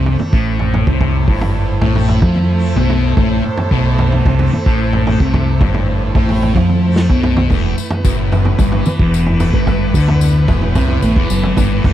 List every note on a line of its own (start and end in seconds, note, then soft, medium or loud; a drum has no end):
0.00 0.18 C2 medium
0.00 0.69 A2 medium
0.00 0.18 C3 loud
0.00 3.78 E3 medium
0.00 0.09 A3 medium
0.00 7.47 A3 medium
0.00 7.47 E4 medium
0.00 7.47 A4 medium
0.00 7.47 C5 medium
0.06 1.93 A3 medium
0.06 floor tom medium
0.19 muted distorted electric guitar stroke medium
0.19 mid tom medium
0.33 0.84 A1 medium
0.33 0.86 A2 medium
0.33 kick loud
0.59 floor tom medium
0.70 3.16 A2 medium
0.74 floor tom medium
0.87 1.25 C2 medium
0.87 1.27 C3 medium
0.87 kick loud
1.01 kick medium
1.01 floor tom medium
1.28 1.78 G1 medium
1.28 1.82 G2 medium
1.28 6.08 E4 medium
1.28 kick loud
1.41 floor tom medium
1.82 2.20 A1 medium
1.82 2.21 A2 medium
1.82 kick loud
1.82 floor tom medium
1.93 2.54 A3 medium
1.93 floor tom medium
2.08 floor tom medium
2.22 2.73 F2 medium
2.22 2.76 F3 medium
2.22 kick medium
2.22 floor tom medium
2.35 mid tom medium
2.54 4.40 A3 medium
2.76 3.15 B1 medium
2.76 3.17 B2 medium
2.76 kick medium
2.76 floor tom medium
2.90 floor tom medium
3.17 3.43 A1 medium
3.17 5.62 A2 medium
3.17 3.44 A2 loud
3.17 kick loud
3.17 floor tom medium
3.46 muted distorted electric guitar stroke medium
3.57 floor tom medium
3.71 4.22 B1 medium
3.71 4.25 B2 loud
3.71 kick loud
3.78 8.69 E3 medium
3.99 floor tom medium
4.12 floor tom medium
4.25 4.51 C2 medium
4.25 4.52 C3 loud
4.25 kick medium
4.25 floor tom medium
4.39 5.01 A3 medium
4.39 floor tom medium
4.53 muted distorted electric guitar stroke medium
4.53 mid tom medium
4.66 5.17 A1 medium
4.66 5.20 A2 medium
4.66 kick loud
4.93 floor tom medium
5.01 6.86 A3 medium
5.07 floor tom medium
5.20 5.58 C2 medium
5.20 5.61 C3 medium
5.20 kick loud
5.34 kick medium
5.34 floor tom medium
5.60 6.12 G1 medium
5.60 6.14 G2 medium
5.60 8.09 A2 medium
5.60 kick loud
5.60 floor tom medium
5.60 mid tom medium
5.74 floor tom medium
6.15 6.53 A1 medium
6.15 6.54 A2 medium
6.15 kick medium
6.15 floor tom medium
6.26 11.05 E4 medium
6.26 floor tom medium
6.43 floor tom medium
6.55 7.06 F2 medium
6.55 7.09 F3 medium
6.55 kick medium
6.55 floor tom medium
6.69 mid tom medium
6.86 7.47 A3 medium
6.96 snare medium
7.09 7.48 B1 medium
7.09 7.50 B2 medium
7.09 kick medium
7.09 floor tom medium
7.23 floor tom medium
7.37 floor tom medium
7.37 mid tom medium
7.47 7.76 E1 medium
7.47 7.76 E2 medium
7.47 9.33 A3 medium
7.47 11.93 B4 medium
7.47 kick medium
7.47 floor tom medium
7.52 11.93 B3 medium
7.52 11.93 E4 medium
7.52 tambourine soft
7.78 muted distorted electric guitar stroke medium
7.78 muted fingered electric bass stroke soft
7.78 tambourine medium
7.91 floor tom medium
8.05 8.55 F#1 medium
8.05 8.58 F#2 medium
8.05 kick medium
8.05 tambourine medium
8.09 10.53 A2 medium
8.32 floor tom medium
8.32 tambourine soft
8.45 floor tom medium
8.58 8.84 G1 medium
8.58 8.86 G2 loud
8.58 kick medium
8.58 floor tom medium
8.58 tambourine medium
8.69 11.15 E3 medium
8.69 floor tom medium
8.86 muted distorted electric guitar stroke medium
8.86 muted fingered electric bass stroke soft
8.86 mid tom medium
8.86 tambourine medium
8.99 9.50 E1 medium
8.99 9.54 E2 medium
8.99 kick loud
9.14 tambourine medium
9.26 floor tom medium
9.33 9.92 A3 medium
9.40 floor tom medium
9.40 tambourine medium
9.53 9.91 G1 medium
9.53 9.94 G2 loud
9.53 kick loud
9.67 kick medium
9.67 floor tom medium
9.67 tambourine soft
9.92 10.45 D2 medium
9.92 10.48 D3 loud
9.92 11.76 A3 medium
9.92 kick loud
9.92 tambourine medium
10.08 floor tom medium
10.21 tambourine medium
10.48 10.74 E1 medium
10.48 10.75 E2 medium
10.48 kick loud
10.48 floor tom medium
10.48 tambourine soft
10.53 11.93 A2 medium
10.62 floor tom medium
10.75 11.01 C2 medium
10.75 11.02 C3 loud
10.75 kick medium
10.75 floor tom medium
10.75 tambourine medium
10.88 floor tom medium
11.02 11.16 A1 medium
11.02 11.16 A2 medium
11.02 mid tom medium
11.02 tambourine medium
11.16 11.29 E1 medium
11.16 11.30 E2 medium
11.16 11.93 E3 medium
11.16 kick loud
11.30 11.56 F#1 medium
11.30 11.57 F#2 loud
11.30 tambourine medium
11.43 floor tom medium
11.57 11.82 G1 medium
11.57 11.84 G2 medium
11.57 kick medium
11.57 floor tom medium
11.57 tambourine medium
11.76 11.93 A3 medium
11.84 11.93 E1 loud
11.84 11.93 E2 loud
11.84 kick loud
11.84 floor tom medium
11.84 tambourine soft